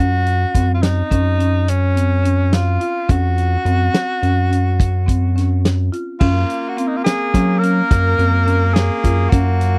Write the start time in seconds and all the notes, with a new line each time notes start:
Already playing: F#2 C#4
0.00 F#4
0.26 closed hi-hat
0.55 F#2 C4, kick, closed hi-hat
0.75 F4
0.82 D#4, snare, closed hi-hat
1.11 F#2 C#4, kick, closed hi-hat
1.39 C#4, closed hi-hat
1.68 C#4, closed hi-hat
1.95 C4, closed hi-hat
2.23 C#4, closed hi-hat
2.53 F4, snare, closed hi-hat
2.80 F4, closed hi-hat
3.09 F2 C#4 F#4, kick, closed hi-hat
3.38 closed hi-hat
3.65 F#2 C4, closed hi-hat
3.94 snare, closed hi-hat
4.22 F#2 C#4, closed hi-hat
4.51 C#4, closed hi-hat
4.80 kick, closed hi-hat
5.06 C4, kick, closed hi-hat
5.36 C#4, snare, closed hi-hat
5.65 snare, closed hi-hat
5.92 F4, closed hi-hat
6.20 F#2 A#3 C#4 F4, kick, crash
6.50 closed hi-hat
6.69 F#4
6.77 C4 F4, closed hi-hat
6.88 D#4
6.97 F4
7.04 G#4, snare, closed hi-hat
7.34 F#3 C#4, kick, snare, closed hi-hat
7.58 C#4 A#4
7.63 closed hi-hat
7.91 F#2, kick, snare, closed hi-hat
8.18 F#2 C4, closed hi-hat
8.46 C#4, closed hi-hat
8.73 G#4, snare, closed hi-hat
9.03 F#2 F4, kick, closed hi-hat
9.30 F#2 C#4 F#4, kick, closed hi-hat
9.61 snare, closed hi-hat